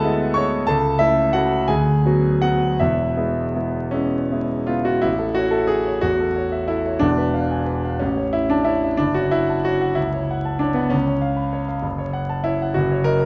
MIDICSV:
0, 0, Header, 1, 2, 480
1, 0, Start_track
1, 0, Key_signature, 3, "major"
1, 0, Tempo, 648649
1, 493, Time_signature, 6, 3, 24, 8
1, 989, Tempo, 715137
1, 1469, Tempo, 748130
1, 3389, Tempo, 659341
1, 6749, Tempo, 630915
1, 7709, Tempo, 608519
1, 9548, End_track
2, 0, Start_track
2, 0, Title_t, "Grand piano"
2, 0, Program_c, 0, 0
2, 0, Control_c, 0, 64, 127
2, 0, Note_on_c, 0, 38, 87
2, 0, Note_on_c, 0, 56, 62
2, 0, Note_on_c, 0, 59, 62
2, 0, Note_on_c, 0, 64, 66
2, 0, Note_on_c, 0, 66, 88
2, 0, Note_on_c, 0, 68, 72
2, 0, Note_on_c, 0, 69, 95
2, 0, Note_on_c, 0, 71, 100
2, 0, Note_on_c, 0, 78, 109
2, 0, Note_on_c, 0, 80, 99
2, 0, Note_on_c, 0, 81, 113
2, 0, Note_on_c, 0, 83, 125
2, 33, Note_off_c, 0, 56, 0
2, 33, Note_on_c, 0, 56, 60
2, 34, Note_off_c, 0, 59, 0
2, 34, Note_on_c, 0, 59, 61
2, 37, Note_off_c, 0, 64, 0
2, 37, Note_on_c, 0, 64, 62
2, 226, Note_off_c, 0, 69, 0
2, 238, Note_off_c, 0, 56, 0
2, 238, Note_off_c, 0, 59, 0
2, 240, Note_off_c, 0, 64, 0
2, 251, Note_on_c, 0, 85, 107
2, 253, Note_off_c, 0, 81, 0
2, 264, Note_on_c, 0, 73, 84
2, 267, Note_on_c, 0, 56, 56
2, 268, Note_on_c, 0, 59, 55
2, 271, Note_on_c, 0, 64, 59
2, 475, Note_off_c, 0, 56, 0
2, 475, Note_off_c, 0, 59, 0
2, 477, Note_off_c, 0, 64, 0
2, 480, Note_off_c, 0, 73, 0
2, 490, Note_off_c, 0, 85, 0
2, 494, Note_on_c, 0, 81, 108
2, 502, Note_on_c, 0, 69, 84
2, 507, Note_on_c, 0, 37, 80
2, 509, Control_c, 0, 64, 0
2, 511, Note_off_c, 0, 66, 0
2, 511, Note_off_c, 0, 78, 0
2, 512, Note_off_c, 0, 38, 0
2, 512, Note_off_c, 0, 83, 0
2, 513, Note_off_c, 0, 80, 0
2, 516, Note_off_c, 0, 68, 0
2, 516, Note_off_c, 0, 71, 0
2, 663, Control_c, 0, 64, 127
2, 725, Note_off_c, 0, 69, 0
2, 731, Note_on_c, 0, 76, 105
2, 737, Note_off_c, 0, 37, 0
2, 738, Note_off_c, 0, 81, 0
2, 739, Note_on_c, 0, 57, 57
2, 740, Note_on_c, 0, 64, 82
2, 747, Note_on_c, 0, 61, 60
2, 965, Note_off_c, 0, 57, 0
2, 969, Note_off_c, 0, 61, 0
2, 973, Note_off_c, 0, 64, 0
2, 984, Note_on_c, 0, 78, 93
2, 986, Note_off_c, 0, 76, 0
2, 992, Note_on_c, 0, 66, 72
2, 995, Note_on_c, 0, 57, 53
2, 997, Note_on_c, 0, 61, 52
2, 1000, Note_on_c, 0, 64, 63
2, 1204, Note_off_c, 0, 57, 0
2, 1205, Note_off_c, 0, 61, 0
2, 1207, Note_off_c, 0, 64, 0
2, 1209, Note_off_c, 0, 66, 0
2, 1217, Note_on_c, 0, 80, 94
2, 1222, Note_off_c, 0, 78, 0
2, 1224, Note_on_c, 0, 38, 77
2, 1224, Note_on_c, 0, 68, 74
2, 1240, Control_c, 0, 64, 0
2, 1364, Control_c, 0, 64, 127
2, 1461, Note_off_c, 0, 38, 0
2, 1471, Note_on_c, 0, 54, 49
2, 1473, Note_on_c, 0, 59, 49
2, 1477, Note_on_c, 0, 66, 59
2, 1683, Note_off_c, 0, 68, 0
2, 1686, Note_off_c, 0, 54, 0
2, 1688, Note_off_c, 0, 59, 0
2, 1690, Note_off_c, 0, 66, 0
2, 1703, Note_on_c, 0, 78, 92
2, 1706, Note_off_c, 0, 80, 0
2, 1708, Note_on_c, 0, 66, 66
2, 1710, Note_on_c, 0, 54, 47
2, 1716, Note_on_c, 0, 59, 49
2, 1928, Note_off_c, 0, 54, 0
2, 1930, Note_off_c, 0, 59, 0
2, 1934, Note_off_c, 0, 66, 0
2, 1946, Note_on_c, 0, 76, 80
2, 1948, Note_off_c, 0, 78, 0
2, 1948, Note_on_c, 0, 28, 61
2, 1954, Note_on_c, 0, 64, 70
2, 1956, Note_on_c, 0, 40, 65
2, 1964, Control_c, 0, 64, 0
2, 2098, Control_c, 0, 64, 127
2, 2180, Note_off_c, 0, 28, 0
2, 2183, Note_off_c, 0, 64, 0
2, 2184, Note_off_c, 0, 40, 0
2, 2186, Note_on_c, 0, 59, 50
2, 2187, Note_on_c, 0, 56, 51
2, 2193, Note_on_c, 0, 64, 55
2, 2399, Note_off_c, 0, 56, 0
2, 2399, Note_off_c, 0, 59, 0
2, 2402, Note_off_c, 0, 64, 0
2, 2430, Note_on_c, 0, 56, 44
2, 2435, Note_on_c, 0, 59, 50
2, 2437, Note_on_c, 0, 64, 54
2, 2645, Note_off_c, 0, 56, 0
2, 2648, Note_off_c, 0, 59, 0
2, 2649, Note_off_c, 0, 64, 0
2, 2662, Note_on_c, 0, 61, 81
2, 2663, Note_off_c, 0, 76, 0
2, 2673, Note_on_c, 0, 56, 49
2, 2676, Note_on_c, 0, 64, 54
2, 2677, Note_on_c, 0, 59, 48
2, 2894, Note_off_c, 0, 56, 0
2, 2896, Note_off_c, 0, 59, 0
2, 2896, Note_off_c, 0, 64, 0
2, 2920, Note_on_c, 0, 56, 47
2, 2925, Note_on_c, 0, 59, 43
2, 2926, Note_on_c, 0, 64, 52
2, 3140, Note_off_c, 0, 56, 0
2, 3143, Note_off_c, 0, 59, 0
2, 3143, Note_off_c, 0, 64, 0
2, 3147, Note_on_c, 0, 65, 83
2, 3159, Note_on_c, 0, 56, 46
2, 3160, Note_off_c, 0, 61, 0
2, 3161, Note_on_c, 0, 59, 49
2, 3164, Note_on_c, 0, 64, 54
2, 3263, Note_on_c, 0, 66, 84
2, 3272, Note_off_c, 0, 65, 0
2, 3361, Note_off_c, 0, 64, 0
2, 3365, Note_off_c, 0, 56, 0
2, 3365, Note_off_c, 0, 59, 0
2, 3371, Note_on_c, 0, 64, 96
2, 3381, Note_off_c, 0, 66, 0
2, 3383, Note_on_c, 0, 33, 63
2, 3405, Control_c, 0, 64, 0
2, 3493, Note_on_c, 0, 69, 54
2, 3551, Control_c, 0, 64, 127
2, 3608, Note_on_c, 0, 66, 99
2, 3620, Note_off_c, 0, 64, 0
2, 3620, Note_on_c, 0, 73, 55
2, 3695, Note_off_c, 0, 69, 0
2, 3727, Note_on_c, 0, 69, 82
2, 3739, Note_on_c, 0, 76, 44
2, 3740, Note_off_c, 0, 66, 0
2, 3819, Note_off_c, 0, 73, 0
2, 3847, Note_on_c, 0, 68, 96
2, 3849, Note_off_c, 0, 69, 0
2, 3860, Note_on_c, 0, 69, 45
2, 3939, Note_off_c, 0, 76, 0
2, 3980, Note_on_c, 0, 73, 52
2, 4060, Note_off_c, 0, 69, 0
2, 4095, Note_on_c, 0, 66, 100
2, 4102, Note_off_c, 0, 68, 0
2, 4106, Note_on_c, 0, 40, 50
2, 4128, Control_c, 0, 64, 0
2, 4180, Note_off_c, 0, 73, 0
2, 4230, Note_on_c, 0, 69, 53
2, 4276, Control_c, 0, 64, 127
2, 4302, Note_off_c, 0, 40, 0
2, 4348, Note_on_c, 0, 73, 50
2, 4423, Note_off_c, 0, 69, 0
2, 4464, Note_on_c, 0, 76, 55
2, 4541, Note_off_c, 0, 73, 0
2, 4577, Note_on_c, 0, 64, 85
2, 4582, Note_off_c, 0, 66, 0
2, 4589, Note_on_c, 0, 69, 49
2, 4658, Note_off_c, 0, 76, 0
2, 4709, Note_on_c, 0, 73, 51
2, 4779, Note_off_c, 0, 69, 0
2, 4795, Note_off_c, 0, 33, 0
2, 4808, Note_on_c, 0, 62, 98
2, 4813, Note_on_c, 0, 28, 64
2, 4820, Note_off_c, 0, 64, 0
2, 4820, Note_on_c, 0, 40, 66
2, 4827, Note_off_c, 0, 73, 0
2, 4843, Control_c, 0, 64, 0
2, 4941, Note_on_c, 0, 71, 51
2, 4953, Control_c, 0, 64, 127
2, 5060, Note_on_c, 0, 77, 57
2, 5133, Note_off_c, 0, 71, 0
2, 5183, Note_on_c, 0, 80, 49
2, 5253, Note_off_c, 0, 77, 0
2, 5295, Note_on_c, 0, 71, 49
2, 5375, Note_off_c, 0, 80, 0
2, 5430, Note_on_c, 0, 77, 47
2, 5491, Note_off_c, 0, 71, 0
2, 5514, Note_off_c, 0, 28, 0
2, 5517, Note_off_c, 0, 40, 0
2, 5533, Note_off_c, 0, 62, 0
2, 5536, Note_on_c, 0, 61, 86
2, 5546, Note_off_c, 0, 77, 0
2, 5553, Note_on_c, 0, 33, 64
2, 5558, Control_c, 0, 64, 0
2, 5665, Control_c, 0, 64, 127
2, 5667, Note_on_c, 0, 73, 49
2, 5778, Note_off_c, 0, 61, 0
2, 5779, Note_on_c, 0, 64, 90
2, 5789, Note_on_c, 0, 76, 49
2, 5855, Note_off_c, 0, 73, 0
2, 5900, Note_off_c, 0, 64, 0
2, 5901, Note_on_c, 0, 62, 89
2, 5911, Note_on_c, 0, 81, 54
2, 5976, Note_off_c, 0, 76, 0
2, 6010, Note_on_c, 0, 64, 94
2, 6019, Note_on_c, 0, 73, 50
2, 6021, Note_off_c, 0, 62, 0
2, 6098, Note_off_c, 0, 81, 0
2, 6149, Note_on_c, 0, 76, 52
2, 6213, Note_off_c, 0, 73, 0
2, 6246, Note_off_c, 0, 33, 0
2, 6249, Note_on_c, 0, 62, 97
2, 6257, Note_off_c, 0, 64, 0
2, 6260, Note_on_c, 0, 30, 63
2, 6266, Note_off_c, 0, 76, 0
2, 6279, Control_c, 0, 64, 0
2, 6374, Note_on_c, 0, 66, 91
2, 6377, Note_off_c, 0, 62, 0
2, 6387, Note_on_c, 0, 73, 51
2, 6407, Control_c, 0, 64, 127
2, 6497, Note_on_c, 0, 64, 99
2, 6501, Note_off_c, 0, 66, 0
2, 6508, Note_on_c, 0, 78, 53
2, 6581, Note_off_c, 0, 73, 0
2, 6630, Note_on_c, 0, 81, 44
2, 6701, Note_off_c, 0, 78, 0
2, 6739, Note_on_c, 0, 66, 95
2, 6743, Note_off_c, 0, 64, 0
2, 6748, Note_on_c, 0, 73, 49
2, 6823, Note_off_c, 0, 81, 0
2, 6868, Note_on_c, 0, 78, 55
2, 6944, Note_off_c, 0, 73, 0
2, 6971, Note_on_c, 0, 64, 91
2, 6985, Note_on_c, 0, 37, 50
2, 6987, Note_off_c, 0, 66, 0
2, 7004, Control_c, 0, 64, 0
2, 7062, Note_off_c, 0, 78, 0
2, 7111, Note_on_c, 0, 73, 52
2, 7153, Control_c, 0, 64, 127
2, 7181, Note_off_c, 0, 37, 0
2, 7241, Note_on_c, 0, 78, 51
2, 7304, Note_off_c, 0, 73, 0
2, 7351, Note_on_c, 0, 81, 54
2, 7428, Note_off_c, 0, 78, 0
2, 7457, Note_on_c, 0, 62, 85
2, 7461, Note_off_c, 0, 64, 0
2, 7472, Note_on_c, 0, 73, 52
2, 7542, Note_off_c, 0, 81, 0
2, 7570, Note_on_c, 0, 59, 81
2, 7583, Note_off_c, 0, 62, 0
2, 7583, Note_on_c, 0, 78, 57
2, 7661, Note_off_c, 0, 73, 0
2, 7676, Note_off_c, 0, 30, 0
2, 7691, Note_on_c, 0, 61, 98
2, 7697, Note_off_c, 0, 59, 0
2, 7704, Note_off_c, 0, 78, 0
2, 7704, Note_on_c, 0, 37, 72
2, 7721, Control_c, 0, 64, 0
2, 7827, Note_on_c, 0, 73, 56
2, 7864, Control_c, 0, 64, 127
2, 7941, Note_on_c, 0, 77, 59
2, 8022, Note_off_c, 0, 73, 0
2, 8060, Note_on_c, 0, 83, 49
2, 8140, Note_off_c, 0, 77, 0
2, 8187, Note_on_c, 0, 73, 54
2, 8260, Note_off_c, 0, 83, 0
2, 8309, Note_on_c, 0, 77, 52
2, 8384, Note_off_c, 0, 73, 0
2, 8412, Note_off_c, 0, 37, 0
2, 8421, Note_on_c, 0, 30, 65
2, 8427, Note_off_c, 0, 61, 0
2, 8432, Note_off_c, 0, 77, 0
2, 8452, Control_c, 0, 64, 0
2, 8546, Note_on_c, 0, 73, 54
2, 8599, Control_c, 0, 64, 127
2, 8665, Note_on_c, 0, 78, 57
2, 8745, Note_off_c, 0, 73, 0
2, 8792, Note_on_c, 0, 81, 61
2, 8864, Note_off_c, 0, 78, 0
2, 8904, Note_on_c, 0, 64, 89
2, 8915, Note_on_c, 0, 73, 51
2, 8986, Note_off_c, 0, 81, 0
2, 9048, Note_on_c, 0, 78, 57
2, 9106, Note_off_c, 0, 73, 0
2, 9126, Note_off_c, 0, 30, 0
2, 9145, Note_on_c, 0, 66, 86
2, 9148, Note_off_c, 0, 64, 0
2, 9158, Note_on_c, 0, 30, 73
2, 9161, Note_off_c, 0, 78, 0
2, 9169, Control_c, 0, 64, 0
2, 9281, Note_on_c, 0, 73, 57
2, 9294, Control_c, 0, 64, 127
2, 9383, Note_on_c, 0, 70, 107
2, 9385, Note_off_c, 0, 66, 0
2, 9394, Note_on_c, 0, 75, 59
2, 9465, Note_off_c, 0, 73, 0
2, 9503, Note_on_c, 0, 82, 50
2, 9548, Note_off_c, 0, 30, 0
2, 9548, Note_off_c, 0, 70, 0
2, 9548, Note_off_c, 0, 75, 0
2, 9548, Note_off_c, 0, 82, 0
2, 9548, End_track
0, 0, End_of_file